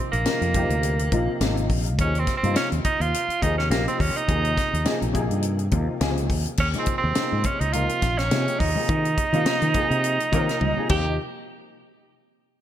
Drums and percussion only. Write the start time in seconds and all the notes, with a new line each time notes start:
0.13 closed hi-hat
0.26 snare, closed hi-hat
0.42 closed hi-hat
0.54 kick, closed hi-hat
0.70 closed hi-hat
0.83 closed hi-hat
0.99 closed hi-hat
1.12 kick, closed hi-hat
1.41 snare, closed hi-hat
1.57 closed hi-hat
1.70 kick, open hi-hat
1.86 closed hi-hat
1.98 kick, closed hi-hat
2.15 closed hi-hat
2.27 kick, snare, closed hi-hat
2.44 closed hi-hat
2.56 snare, closed hi-hat
2.72 closed hi-hat
2.85 kick, closed hi-hat
3.01 closed hi-hat
3.14 closed hi-hat
3.30 closed hi-hat
3.42 kick, closed hi-hat
3.59 snare
3.71 snare, closed hi-hat
3.88 closed hi-hat
4.00 kick, open hi-hat
4.17 closed hi-hat
4.29 kick, closed hi-hat
4.45 closed hi-hat
4.58 kick, snare, closed hi-hat
4.74 closed hi-hat
4.85 snare, closed hi-hat
5.02 closed hi-hat
5.15 kick, closed hi-hat
5.31 closed hi-hat
5.43 closed hi-hat
5.59 closed hi-hat
5.71 kick, closed hi-hat
6.01 snare, closed hi-hat
6.17 closed hi-hat
6.30 kick, open hi-hat
6.46 closed hi-hat
6.57 kick, crash
6.74 closed hi-hat
6.86 kick, closed hi-hat
7.15 snare, closed hi-hat
7.44 kick, closed hi-hat
7.61 closed hi-hat
7.73 closed hi-hat
7.89 closed hi-hat
8.02 kick, snare, closed hi-hat
8.19 snare, closed hi-hat
8.31 snare, closed hi-hat
8.48 closed hi-hat
8.60 kick, open hi-hat
8.89 kick, closed hi-hat
9.05 closed hi-hat
9.18 kick, closed hi-hat
9.33 closed hi-hat
9.46 snare, closed hi-hat
9.62 closed hi-hat
9.74 kick, closed hi-hat
9.91 closed hi-hat
10.04 closed hi-hat
10.20 closed hi-hat
10.33 kick, closed hi-hat
10.49 snare, closed hi-hat
10.61 high tom
10.89 kick, crash